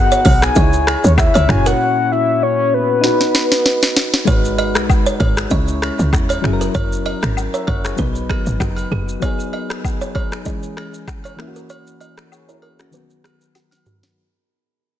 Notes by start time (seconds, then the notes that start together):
Already playing: B3 D#4 F#4 G#4 D#5 F#5
0.12 C#5, shaker
0.25 B1 C#5, kick, open hi-hat, high agogo
0.42 G#5, finger snap, cross-stick, shaker
0.55 C#2 D#4 G#4 C#5 D#5, kick, shaker
0.62 E4
0.73 shaker
0.87 finger snap, cross-stick, high agogo
1.04 D#2 C#5, shaker
1.18 E5, finger snap, kick, cross-stick, low woodblock, shaker
1.34 C#2 C#5, high agogo, shaker
1.47 F#1 A#2 C#4 E4 F#4 G#5, finger snap, cross-stick
1.52 C#5
1.66 A#4 F#5, shaker
2.12 E5
2.43 C#5
2.74 B4
3.01 D#4 F#4, snare
3.06 B4
3.21 snare
3.35 snare
3.52 snare
3.66 snare
3.83 snare
3.97 snare
4.14 snare
4.25 G#1 G#3 D#4 F#4 C#5, kick, high agogo, shaker
4.30 B4
4.45 shaker
4.58 D#5, high agogo
4.75 B1, finger snap, cross-stick, shaker
4.89 kick, low woodblock, shaker
5.06 C#5, shaker
5.20 G#1 C#5, kick, high agogo
5.37 finger snap, cross-stick, shaker
5.50 C#2 G#3 C#4 E4 C#5 D#5, kick, shaker
5.68 shaker
5.82 finger snap, cross-stick, high agogo
5.99 C#2, shaker
6.13 E2, finger snap, kick, cross-stick, low woodblock, shaker
6.29 C#5, high agogo, shaker
6.42 F#1 F#3 C#4 E4, finger snap, cross-stick
6.47 G#4
6.53 A#4
6.61 A#4, shaker
6.75 F#1 C#5, kick, high agogo, shaker
6.92 shaker
7.06 D#5, high agogo
7.23 G#1, finger snap, cross-stick, shaker
7.37 low woodblock, shaker
7.54 A#4 C#5 E5, shaker
7.67 F#1 C#5 F#5, kick, high agogo
7.85 G#4 C#5, finger snap, cross-stick, shaker
7.96 B1 F#3 B3 D#4 B4, kick, shaker
8.01 B4
8.15 shaker
8.29 G#4, finger snap, kick, cross-stick, high agogo
8.46 G#1, shaker
8.60 F#1 F#4, finger snap, kick, cross-stick, low woodblock, shaker
8.76 high agogo, shaker
8.91 F#1 G#4
9.09 shaker
9.20 F#3 B3 D#4 C#5, kick, high agogo, shaker
9.25 G#4
9.40 shaker
9.53 D#5, high agogo
9.70 finger snap, cross-stick, shaker
9.84 kick, low woodblock, shaker
10.01 C#5, shaker
10.15 C#5, kick, high agogo
10.32 finger snap, cross-stick, shaker
10.45 E3 G#3 C#4 G#4 D#5, kick, shaker
10.63 shaker
10.77 finger snap, cross-stick, high agogo
10.94 shaker
11.08 finger snap, kick, cross-stick, low woodblock, shaker
11.24 C#5, high agogo, shaker
11.36 E3 A#3 C#4, finger snap, cross-stick
11.41 E4
11.48 F#4
11.56 A#4, shaker
11.70 C#5, high agogo, shaker
11.87 shaker
12.00 D#5, high agogo, shaker
12.18 finger snap, cross-stick, shaker
12.32 G#4 C#5, low woodblock, shaker
12.49 E4 A#4 C#5, shaker
12.62 A#4, high agogo
12.79 C#4 F#4, finger snap, cross-stick, shaker
12.91 D#3 F#3 B3 B4, shaker
12.96 F#4
13.10 shaker
13.24 G#4, finger snap, cross-stick, high agogo, shaker
13.41 shaker
13.55 F#4, snare, low woodblock, shaker
13.71 snare, high agogo, shaker
13.86 F#4, mid tom, shaker
14.03 snare, shaker